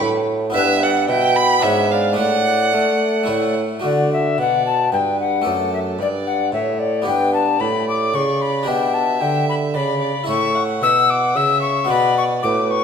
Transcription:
0.00 0.51 A2 medium
0.00 0.54 A2 medium
0.00 0.49 D4 medium
0.00 0.50 F#4 medium
0.00 0.50 B4 medium
0.50 1.57 B3 medium
0.50 1.58 E4 medium
0.50 1.59 B4 medium
0.54 1.08 G2 medium
0.54 1.05 G2 medium
0.54 0.85 B4 medium
0.54 0.85 E5 loud
0.83 1.11 D5 medium
0.83 1.08 F#5 loud
1.09 1.59 B2 medium
1.09 1.62 B2 medium
1.09 1.37 E5 medium
1.09 1.38 G5 loud
1.35 1.66 G5 medium
1.35 1.64 B5 loud
1.59 2.15 B3 soft
1.59 2.13 D4 medium
1.59 2.16 B4 soft
1.59 1.93 E5 loud
1.63 2.14 G#2 medium
1.63 2.20 G#2 medium
1.63 1.91 C#5 medium
1.91 2.18 D5 medium
1.91 2.17 F5 medium
2.13 2.72 A3 medium
2.13 3.24 D4 soft
2.13 3.25 D5 soft
2.18 2.70 A2 medium
2.18 2.74 A2 medium
2.18 3.54 D5 medium
2.18 3.54 F#5 loud
2.73 3.22 A3 medium
2.73 3.31 A3 medium
3.23 3.78 A3 soft
3.23 3.81 E4 soft
3.23 3.81 C#5 soft
3.28 3.80 A2 soft
3.28 3.68 A2 medium
3.79 4.35 A3 soft
3.79 5.40 F#4 soft
3.79 5.41 D5 soft
3.84 4.34 D3 soft
3.84 4.35 D3 soft
3.84 4.10 D5 medium
4.13 4.39 E5 medium
4.38 4.88 B2 soft
4.38 4.92 B2 soft
4.38 4.89 D5 medium
4.38 4.65 F#5 medium
4.66 4.92 A5 medium
4.92 5.42 G2 soft
4.92 5.45 G2 medium
4.92 5.48 B4 medium
4.92 5.19 G5 medium
5.20 5.73 F#5 medium
5.42 5.96 A3 soft
5.42 7.02 A4 soft
5.42 7.03 D5 soft
5.46 5.96 F#2 soft
5.46 5.99 F#2 medium
5.46 6.01 A4 medium
5.73 5.79 E5 medium
5.99 6.49 G2 soft
5.99 6.52 G2 soft
5.99 6.53 D5 medium
5.99 6.08 D5 medium
6.27 6.53 F#5 medium
6.52 7.03 A2 soft
6.52 7.06 A2 medium
6.52 7.08 C#5 medium
6.52 6.81 E5 medium
6.79 7.07 D5 medium
7.02 7.57 B3 soft
7.02 8.62 G4 soft
7.02 8.63 D5 soft
7.06 7.56 G2 soft
7.06 7.60 G2 medium
7.06 7.59 B4 medium
7.06 7.33 G5 medium
7.34 7.62 A5 medium
7.60 8.10 A2 soft
7.60 8.13 A2 medium
7.60 8.68 D5 medium
7.60 7.88 B5 medium
7.89 8.17 D6 medium
8.14 8.63 C#3 soft
8.14 8.67 C#3 medium
8.14 8.43 C#6 medium
8.42 8.69 B5 medium
8.63 10.22 D4 soft
8.63 10.23 G4 soft
8.63 10.23 D5 soft
8.63 9.76 E5 medium
8.68 9.20 B2 medium
8.68 9.17 B2 soft
8.68 8.96 G5 medium
8.94 9.22 A5 medium
9.21 9.71 D3 medium
9.21 9.77 D3 medium
9.21 9.48 G5 medium
9.49 9.55 B5 medium
9.74 10.24 C#3 soft
9.74 10.13 C#3 medium
9.74 10.00 D5 medium
9.74 10.27 B5 medium
10.01 10.27 D5 medium
10.24 11.83 E4 soft
10.24 11.84 A4 soft
10.24 11.85 C#5 soft
10.24 10.56 E5 medium
10.28 10.78 A2 medium
10.28 10.63 C#6 medium
10.55 11.38 F#5 medium
10.82 11.32 B2 medium
10.82 11.37 B2 medium
10.82 11.12 E6 medium
11.10 11.38 D6 medium
11.36 11.90 C#3 medium
11.36 11.86 C#3 soft
11.36 11.89 E5 medium
11.36 11.61 E6 medium
11.62 11.92 C#6 medium
11.85 12.84 B3 soft
11.85 12.84 F#4 soft
11.85 12.84 D5 soft
11.89 12.39 B2 medium
11.89 12.43 B2 medium
11.89 12.46 D5 medium
11.89 12.17 B5 medium
12.18 12.24 C#6 medium
12.43 12.84 A2 medium
12.43 12.84 B4 medium
12.43 12.72 D6 medium
12.71 12.84 C#6 medium

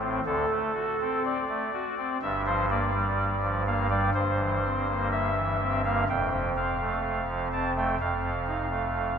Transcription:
0.00 0.20 A1 medium
0.00 0.20 A2 medium
0.00 0.20 C4 medium
0.26 0.46 D2 medium
0.26 0.46 D3 medium
0.26 1.22 A4 loud
0.50 0.72 A3 medium
0.74 0.96 F#4 medium
1.01 1.44 C4 medium
1.25 2.18 D5 loud
1.49 1.70 A3 medium
1.73 1.94 F#4 medium
1.98 2.17 C4 medium
2.22 4.10 G1 medium
2.22 4.10 G2 medium
2.22 2.42 E5 loud
2.46 2.67 F3 medium
2.46 2.65 C5 loud
2.70 2.90 A#3 medium
2.70 3.62 D5 loud
2.94 3.36 G3 medium
3.43 3.63 F3 medium
3.66 3.87 A#3 medium
3.66 3.86 F5 loud
3.90 4.10 G3 medium
3.90 4.10 D5 loud
4.14 6.04 G1 medium
4.14 6.04 G2 medium
4.14 5.08 C5 loud
4.39 4.60 E3 medium
4.64 4.85 C4 medium
4.88 5.30 A#3 medium
5.12 5.82 E5 loud
5.36 5.57 E3 medium
5.61 5.82 C4 medium
5.84 6.04 A#3 medium
5.84 6.04 F5 loud
6.09 7.95 F1 medium
6.09 7.95 F2 medium
6.09 6.49 G5 loud
6.32 6.53 F3 medium
6.56 6.77 C4 medium
6.56 7.48 F5 loud
6.81 7.23 A3 medium
7.28 7.48 F3 medium
7.52 7.73 C4 medium
7.52 7.72 A5 loud
7.76 7.96 A3 medium
7.76 7.96 G5 loud
8.00 9.18 F1 medium
8.00 9.18 F2 medium
8.00 9.18 F5 loud
8.23 8.44 F3 medium
8.46 8.67 D#4 medium
8.71 9.14 A3 medium

